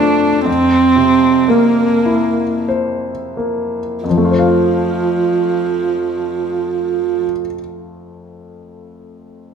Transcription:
Already playing: F2 C3 A3 D4 F4 C5
0.46 F2 C4
0.96 C3
1.48 A#3
2.06 E4
2.68 C5
3.37 A#3
4.04 F2 F3
4.10 F3
4.18 A3
4.25 F4
4.31 C5
4.39 F5

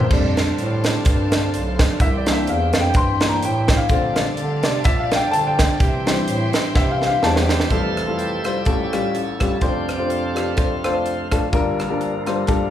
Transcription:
Already playing: E3 C4 C5
0.10 F2 D3 G3 A3 D4 F4 D5 F5 A5, kick, crash
0.37 snare, closed hi-hat
0.58 A2, closed hi-hat
0.84 snare, closed hi-hat
1.05 G2, kick, closed hi-hat
1.32 snare, closed hi-hat
1.54 B1, closed hi-hat
1.79 kick, snare, closed hi-hat
2.00 C2 E3 G3 G4 E5 G5, kick, closed hi-hat
2.17 D5
2.26 E3 A#3 D4, snare, closed hi-hat
2.32 E5
2.47 E2 F5, closed hi-hat
2.73 F2, snare, closed hi-hat
2.81 G5
2.94 G2 C6, kick, closed hi-hat
3.20 E3 A#3 D4, snare, closed hi-hat
3.29 A#5
3.42 A2 G5, closed hi-hat
3.68 kick, snare, closed hi-hat
3.77 F5
3.89 A#2 D3 F3 A3 C4 D4 A4 D5 F5 A5, kick, closed hi-hat
4.16 snare, closed hi-hat
4.37 D3, closed hi-hat
4.63 C3 D5, snare, closed hi-hat
4.84 A#2 E5, kick, closed hi-hat
4.99 F5
5.12 G5, snare, closed hi-hat
5.31 D3 A5, closed hi-hat
5.47 G5
5.59 kick, snare, closed hi-hat
5.80 C3 E3 G3 C4 G4 C5 E5 G5 C6, kick, closed hi-hat
6.06 E3 G3 C4, snare, closed hi-hat
6.27 A2, closed hi-hat
6.53 snare, closed hi-hat
6.75 C3 E5, kick, snare
6.91 F5
7.02 snare
7.07 F5
7.23 E2 E3 G3 C4 A5, snare
7.36 G5, snare
7.49 snare
7.60 snare
7.70 F1 F2 E3 G3 A3 E4 F4 A4 C5 F5, kick, closed hi-hat
7.97 cross-stick, closed hi-hat
8.07 G3 E4 F4 A4
8.18 G4 A4 E5, closed hi-hat
8.44 G3 E4 F4 C5, cross-stick, closed hi-hat
8.65 A1 A2 G3 C#4 F4 A4, kick, closed hi-hat
8.93 G3 C#4 F4 G4, cross-stick, closed hi-hat
9.14 C#4 E4 A4, closed hi-hat
9.40 G3 C#4 F4 G4, kick, cross-stick, closed hi-hat
9.61 F1 F2 F3 A3 C4 D4 F4 G4 C5, kick, closed hi-hat
9.89 cross-stick, closed hi-hat
9.98 A3 D4 F4 C5
10.09 A3 C4 F4, closed hi-hat
10.35 A3 D4 F4 G4, cross-stick, closed hi-hat
10.56 A3 D4 F4 C5, kick, closed hi-hat
10.84 A3 D4 F4 C5, cross-stick, closed hi-hat
11.06 closed hi-hat
11.31 A3 D4 F4 A4, kick, cross-stick, closed hi-hat
11.52 G1 G2 G3 D4 F4 A#4, kick, closed hi-hat
11.79 G2 F3 A#3, cross-stick, closed hi-hat
11.89 G3 D4 F4 A#4
12.01 closed hi-hat
12.26 G3 D4 F4 C5, cross-stick, closed hi-hat
12.47 G3 D4 F4 A4, kick, closed hi-hat

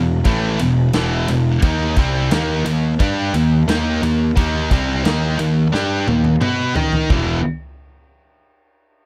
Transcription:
Already playing: E1 E2 B2
0.25 A1 A2 E3 A3, kick, ride
0.59 E1 E2 B2, ride
0.93 E1 E2 B2 E3, snare, ride
1.28 E1 E2 B2, ride
1.62 D#2 D#3 A#3 D#4, kick, ride
1.96 C2 C3 G3 C4, kick, ride
2.30 D#2 D#3 A#3 D#4, snare, ride
2.65 D#2 D#3 A#3, ride
2.99 G2 G3 D4 G4, kick, ride
3.34 D#2 D#3 A#3, ride
3.68 D#2 D#3 A#3 D#4, snare, ride
4.03 D#2 D#3 A#3, ride
4.36 D#2 D#3 A#3 D#4, kick, ride
4.71 C2 C3 G3 C4, kick, ride
5.04 D#2 D#3 A#3 D#4, snare, ride
5.39 D#2 D#3 A#3, ride
5.72 G2 G3 D4 G4, snare
6.07 D#2 D#3 A#3, high tom
6.24 high tom
6.41 B2 B3 F#4 B4, mid tom
6.75 D#3 D#4 A#4 D#5, floor tom
6.93 floor tom
7.10 E1 E2 B2 E3, kick, floor tom

